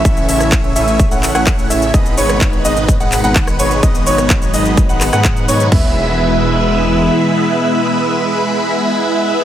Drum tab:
CC |----------------|----------------|----------------|x---------------|
HH |xxoxxxoxxxoxxxox|xxoxxxoxxxoxxxox|xxoxxxoxxxoxxxox|----------------|
SH |xxxxx-xxxxxxxxxx|xxxxx-xxxxxxxxxx|xxxxxxxxxxxxxxxx|----------------|
CP |----x-----x-x---|----x-----x-x---|----x-----x-x---|----------------|
SD |---r-------r----|---r---------r--|---r------rr----|----------------|
FT |----------------|----------------|----------------|o---------------|
BD |o---o---o---o---|o---o---o---o---|o---o---o---o---|o---------------|

CC |----------------|
HH |----------------|
SH |----------------|
CP |----------------|
SD |----------------|
FT |----------------|
BD |----------------|